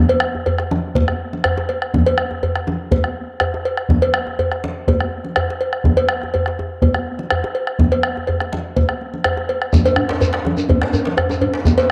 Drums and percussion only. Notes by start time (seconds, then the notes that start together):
0.09 bombo rim, cowbell, high conga
0.20 bombo rim
0.35 djembe tone
0.46 cowbell, high conga, djembe bass
0.59 bombo rim, djembe slap
0.71 djembe slap, high conga, djembe tone, low conga
0.95 bombo low, cowbell, djembe slap, high conga, djembe bass
1.08 bombo rim, djembe slap, djembe tone
1.33 djembe slap, high conga, low conga
1.44 bombo rim, cowbell, djembe slap, djembe bass
1.58 djembe slap, djembe tone
1.69 bombo rim, cowbell, djembe slap, high conga
1.82 bombo rim
1.94 bombo low, high conga, djembe tone, low conga, djembe bass
2.07 cowbell, high conga
2.18 bombo rim, djembe slap
2.31 djembe tone
2.43 cowbell, high conga, djembe bass
2.56 bombo rim, djembe slap
2.67 djembe tone, low conga
2.91 bombo low, cowbell, high conga, djembe bass
3.04 bombo rim, djembe tone, high conga
3.40 bombo rim, cowbell, djembe bass
3.54 djembe slap, djembe tone
3.65 cowbell
3.77 bombo rim
3.89 bombo low, djembe tone, high conga, djembe bass, low conga
4.02 cowbell, high conga
4.14 bombo rim, djembe slap
4.27 bombo rim, djembe tone
4.39 cowbell, high conga, djembe bass
4.51 bombo rim, djembe slap
4.64 djembe tone, low conga
4.87 bombo low, cowbell, high conga, djembe bass
5.00 bombo rim, high conga, djembe tone
5.24 low conga
5.36 bombo rim, cowbell, djembe bass
5.50 djembe slap
5.61 cowbell
5.73 bombo rim
5.84 bombo low, high conga, djembe tone, low conga, djembe bass
5.97 cowbell, high conga
6.09 bombo rim, djembe slap
6.22 bombo rim, djembe tone
6.34 cowbell, high conga, djembe bass
6.46 bombo rim, djembe slap
6.59 djembe tone
6.82 bombo low, cowbell, high conga, djembe bass
6.94 bombo rim, high conga, djembe tone
7.19 low conga
7.30 bombo rim, cowbell, djembe bass
7.44 djembe slap, djembe tone
7.55 cowbell
7.67 bombo rim
7.79 bombo low, high conga, djembe tone, low conga, djembe bass
7.92 bombo rim, cowbell
8.03 bombo rim
8.16 bombo rim, djembe slap, djembe tone
8.27 bombo rim, cowbell, high conga, djembe bass
8.40 bombo rim, djembe slap, high conga
8.52 bombo rim, djembe tone, low conga
8.76 bombo low, cowbell, djembe slap, high conga, djembe bass
8.89 bombo rim, djembe slap, djembe tone
9.01 djembe slap, high conga
9.13 djembe slap, high conga, low conga
9.24 bombo rim, cowbell, djembe bass
9.37 djembe slap, djembe tone, high conga
9.49 cowbell, high conga
9.62 bombo rim
9.73 bombo low, djembe tone, high conga, djembe bass, low conga, shekere
9.85 cowbell, djembe tone, high conga, shekere
9.96 bombo rim, djembe slap, djembe bass
10.09 bombo rim, djembe slap, djembe tone
10.20 cowbell, djembe tone, high conga, djembe bass, shekere
10.33 bombo rim, djembe slap
10.45 djembe tone, low conga
10.57 djembe tone, shekere
10.69 bombo low, cowbell, high conga, djembe bass
10.81 bombo rim, djembe slap, djembe tone, high conga
10.93 djembe tone, shekere
11.05 djembe slap, low conga
11.17 bombo rim, cowbell, djembe bass
11.29 djembe slap, djembe tone, shekere
11.41 cowbell, djembe bass
11.54 djembe slap
11.65 bombo low, djembe tone, high conga, djembe bass, low conga, shekere
11.78 cowbell, djembe slap, high conga, shekere